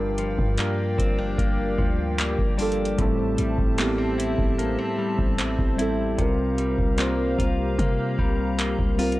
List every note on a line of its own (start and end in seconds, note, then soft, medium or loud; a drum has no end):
0.00 0.36 G1 loud
0.00 2.98 G2 medium
0.00 0.18 F3 medium
0.00 0.50 G3 medium
0.00 0.51 D4 medium
0.00 0.52 F4 medium
0.00 6.15 G4 medium
0.00 0.52 A#4 loud
0.00 2.95 D5 medium
0.00 2.95 F5 medium
0.00 2.95 G5 medium
0.18 1.77 F3 medium
0.18 closed hi-hat medium
0.39 0.96 G2 loud
0.39 kick loud
0.57 2.02 G3 medium
0.57 1.37 A#3 medium
0.57 2.03 D4 medium
0.57 2.04 F4 medium
0.57 clap loud
0.57 closed hi-hat medium
0.61 2.05 A#4 medium
0.98 1.37 G1 loud
0.98 1.18 C4 medium
0.98 kick medium
0.98 closed hi-hat medium
1.18 2.57 D4 medium
1.38 1.77 G1 loud
1.38 2.17 A#3 medium
1.38 kick loud
1.38 closed hi-hat medium
1.78 2.36 D2 loud
1.78 3.06 F3 medium
1.78 kick loud
2.18 3.06 A#3 medium
2.18 clap loud
2.18 closed hi-hat medium
2.39 2.96 G1 medium
2.39 kick medium
2.57 2.94 G3 medium
2.57 3.06 D4 medium
2.57 2.95 D4 medium
2.57 2.95 F4 medium
2.57 closed hi-hat soft
2.57 open hi-hat medium
2.62 2.96 A4 loud
2.72 closed hi-hat soft
2.85 closed hi-hat medium
2.97 3.37 A1 loud
2.97 6.18 A2 medium
2.97 3.70 G3 medium
2.97 3.71 C4 medium
2.97 3.72 E4 medium
2.97 9.20 C5 medium
2.97 6.15 E5 medium
2.97 6.15 A5 medium
2.97 kick loud
2.97 closed hi-hat medium
3.01 3.72 A4 loud
3.38 3.58 A1 loud
3.38 4.98 G3 medium
3.38 closed hi-hat medium
3.59 4.35 A1 loud
3.59 kick loud
3.77 5.23 G3 medium
3.77 3.98 A#3 medium
3.77 3.85 B3 medium
3.77 5.24 E4 medium
3.77 clap loud
3.77 closed hi-hat medium
3.82 5.26 C4 medium
3.82 5.25 G4 medium
3.98 4.58 C4 medium
4.18 5.77 E4 medium
4.18 closed hi-hat medium
4.38 4.77 A1 loud
4.38 kick loud
4.58 4.78 A#3 medium
4.58 closed hi-hat medium
4.78 5.37 C4 medium
4.98 6.58 G3 medium
5.19 5.57 A1 loud
5.19 kick medium
5.38 6.98 C4 medium
5.38 clap loud
5.38 closed hi-hat medium
5.59 6.16 A1 loud
5.59 kick medium
5.76 6.14 G3 medium
5.76 6.14 C4 medium
5.76 6.27 E4 medium
5.76 6.15 E4 medium
5.76 closed hi-hat medium
5.81 6.16 A4 medium
6.17 6.76 C2 loud
6.17 9.20 C3 medium
6.17 6.90 G3 medium
6.17 6.91 C4 medium
6.17 6.92 F4 medium
6.17 9.20 G4 medium
6.17 9.20 F5 medium
6.17 9.20 A#5 medium
6.17 kick loud
6.17 closed hi-hat medium
6.21 6.92 A#4 medium
6.58 8.18 G3 medium
6.58 closed hi-hat medium
6.79 7.36 C2 loud
6.79 kick loud
6.97 8.42 G3 medium
6.97 7.78 A#3 medium
6.97 8.43 C4 medium
6.97 8.44 F4 medium
6.97 clap loud
6.97 closed hi-hat medium
7.01 8.45 C5 medium
7.39 7.77 C2 loud
7.39 8.98 F4 medium
7.39 kick medium
7.39 closed hi-hat medium
7.78 8.17 C3 loud
7.78 8.57 A#3 medium
7.78 kick medium
7.78 closed hi-hat medium
8.19 8.76 C2 loud
8.19 9.20 G3 medium
8.19 kick medium
8.59 9.20 A#3 medium
8.59 clap loud
8.59 closed hi-hat medium
8.79 9.20 C2 loud
8.79 kick medium
8.97 9.20 G3 medium
8.97 9.20 C4 medium
8.97 9.20 F4 medium
8.97 closed hi-hat soft
8.97 open hi-hat medium
9.02 9.20 A#4 loud
9.12 closed hi-hat medium